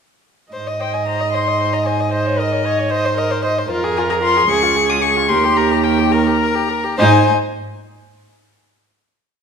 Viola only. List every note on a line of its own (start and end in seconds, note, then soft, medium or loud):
0.53 2.08 D#5 medium
2.12 2.40 C5 medium
2.39 2.67 A#4 soft
2.65 2.92 C#5 medium
2.91 3.16 C5 medium
3.17 3.43 A#4 medium
3.43 3.51 C5 medium
3.69 4.47 A#4 medium
4.49 5.31 G#4 medium
5.29 6.13 G4 medium
6.13 6.55 A#4 medium
6.99 7.31 D#4 medium